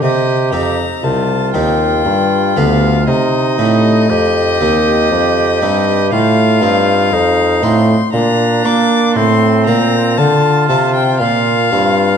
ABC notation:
X:1
M:3/4
L:1/16
Q:1/4=59
K:Cdor
V:1 name="Violin"
e2 b2 a2 g4 f2 | e12 | [K:Fmix] f6 c'2 b2 d'2 | c'2 b2 a2 a g f4 |]
V:2 name="Oboe"
G2 z2 F8 | E4 G8 | [K:Fmix] F4 E2 z2 D4 | C4 F4 F4 |]
V:3 name="Harpsichord"
z2 [CEG]4 [CEG]2 z2 [=B,FG]2 | z2 [CEG]4 [CEG]4 [CEG]2 | [K:Fmix] z2 [CEF]4 [CEF]2 z2 [B,DF]2 | z2 [CF]4 [CF]4 [CF]2 |]
V:4 name="Harpsichord" clef=bass
C,2 F,,2 C,,2 E,,2 G,,2 D,,2 | C,2 A,,2 F,,2 E,,2 F,,2 G,,2 | [K:Fmix] A,,2 G,,2 F,,2 A,,2 B,,2 z2 | A,,2 B,,2 D,2 C,2 B,,2 G,,2 |]
V:5 name="Bassoon" clef=bass
C,2 F,,2 C,,2 E,,2 G,,2 D,,2 | C,2 A,,2 F,,2 E,,2 F,,2 G,,2 | [K:Fmix] A,,2 G,,2 F,,2 A,,2 B,,2 B,2 | A,,2 B,,2 D,2 C,2 B,,2 G,,2 |]